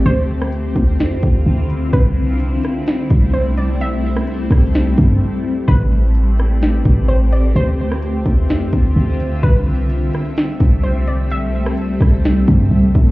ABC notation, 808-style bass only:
X:1
M:4/4
L:1/16
Q:1/4=128
K:C
V:1 name="808-style bass" clef=bass
D,,6 D,,2 F,,2 D,,2 D,,4 | C,,6 z4 C,,6 | B,,,3 C,,3 C,,4 G,,2 z4 | A,,,8- A,,,2 A,,,6 |
D,,6 D,,2 F,,2 D,,2 D,,4 | C,,6 z4 C,,6 | B,,,3 C,,3 C,,4 G,,2 C,,2 C,,2 |]